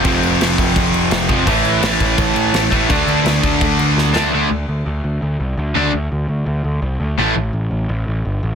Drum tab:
CC |xxxxxxxx|xxxxxxxx|xxxxxx--|--------|
SD |--o---o-|--o---o-|--o---oo|--------|
BD |o--oo--o|o--oo--o|o--oo---|--------|

CC |--------|--------|
SD |--------|--------|
BD |--------|--------|